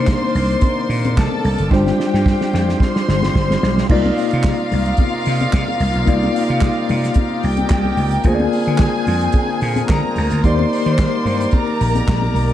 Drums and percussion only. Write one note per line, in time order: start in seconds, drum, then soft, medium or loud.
0.07 kick loud
0.07 snare loud
0.07 clap medium
0.07 closed hi-hat medium
0.22 muted conga soft
0.22 high conga medium
0.35 open hi-hat medium
0.35 low conga medium
0.50 closed hi-hat soft
0.61 kick loud
0.61 closed hi-hat medium
0.61 muted conga soft
0.61 high conga medium
0.90 open hi-hat medium
1.05 closed hi-hat medium
1.05 high conga medium
1.17 kick loud
1.17 snare loud
1.17 clap loud
1.17 closed hi-hat medium
1.17 muted conga soft
1.32 muted conga soft
1.32 high conga medium
1.44 open hi-hat medium
1.44 low conga medium
1.58 closed hi-hat soft
1.71 kick loud
1.71 snare medium
1.71 low conga medium
1.87 snare medium
1.87 high conga medium
2.00 snare medium
2.14 snare medium
2.26 kick loud
2.26 snare medium
2.41 snare medium
2.41 high conga medium
2.53 snare medium
2.53 low conga medium
2.69 snare medium
2.80 kick loud
2.80 snare medium
2.80 high conga medium
2.95 snare medium
2.95 muted conga soft
3.08 snare medium
3.23 snare medium
3.23 high conga medium
3.35 kick loud
3.35 snare loud
3.35 muted conga soft
3.51 snare medium
3.51 muted conga soft
3.51 high conga medium
3.63 snare loud
3.63 low conga medium
3.78 snare medium
3.89 kick loud
3.89 crash loud
3.89 low conga medium
4.06 high conga medium
4.18 open hi-hat medium
4.31 closed hi-hat soft
4.43 kick loud
4.43 snare loud
4.43 clap medium
4.43 closed hi-hat medium
4.59 muted conga soft
4.72 open hi-hat medium
4.72 low conga medium
4.86 closed hi-hat medium
4.97 kick loud
4.97 closed hi-hat medium
4.97 muted conga soft
4.97 high conga medium
5.13 muted conga soft
5.25 open hi-hat medium
5.40 closed hi-hat soft
5.40 high conga medium
5.53 kick loud
5.53 snare loud
5.53 clap loud
5.53 closed hi-hat medium
5.68 muted conga soft
5.68 high conga medium
5.80 open hi-hat medium
5.80 low conga medium
5.94 closed hi-hat soft
6.07 kick loud
6.07 closed hi-hat medium
6.07 muted conga soft
6.07 low conga medium
6.23 muted conga soft
6.23 high conga medium
6.36 open hi-hat medium
6.49 closed hi-hat soft
6.61 kick loud
6.61 snare loud
6.61 clap loud
6.61 closed hi-hat medium
6.89 open hi-hat medium
6.89 low conga medium
7.04 snare soft
7.04 closed hi-hat medium
7.14 kick loud
7.14 closed hi-hat medium
7.14 muted conga soft
7.14 high conga medium
7.43 open hi-hat medium
7.57 closed hi-hat medium
7.57 high conga medium
7.70 kick loud
7.70 snare loud
7.70 clap loud
7.70 closed hi-hat medium
7.85 muted conga soft
7.85 high conga medium
7.97 open hi-hat medium
7.97 low conga medium
8.11 closed hi-hat soft
8.24 kick loud
8.24 closed hi-hat medium
8.24 low conga medium
8.40 muted conga soft
8.40 high conga medium
8.53 open hi-hat medium
8.66 closed hi-hat soft
8.78 kick loud
8.78 snare loud
8.78 clap loud
8.78 closed hi-hat medium
8.78 muted conga soft
9.07 open hi-hat medium
9.07 low conga medium
9.21 closed hi-hat medium
9.32 kick loud
9.32 closed hi-hat medium
9.32 high conga medium
9.48 muted conga soft
9.61 open hi-hat medium
9.76 closed hi-hat medium
9.76 high conga medium
9.89 kick loud
9.89 snare loud
9.89 clap medium
9.89 closed hi-hat medium
10.04 high conga medium
10.16 open hi-hat medium
10.16 low conga medium
10.30 closed hi-hat medium
10.44 kick loud
10.44 closed hi-hat medium
10.44 muted conga soft
10.44 low conga medium
10.59 muted conga soft
10.59 high conga medium
10.73 open hi-hat medium
10.86 closed hi-hat medium
10.98 kick loud
10.98 snare loud
10.98 clap medium
10.98 closed hi-hat medium
11.26 open hi-hat medium
11.26 low conga medium
11.40 closed hi-hat medium
11.51 kick loud
11.51 closed hi-hat medium
11.51 muted conga soft
11.51 high conga medium
11.67 muted conga soft
11.81 open hi-hat medium
11.95 closed hi-hat medium
11.95 high conga medium
12.08 kick loud
12.08 snare loud
12.08 clap medium
12.08 closed hi-hat medium
12.22 muted conga soft
12.22 high conga medium
12.34 open hi-hat medium
12.34 low conga medium
12.49 closed hi-hat soft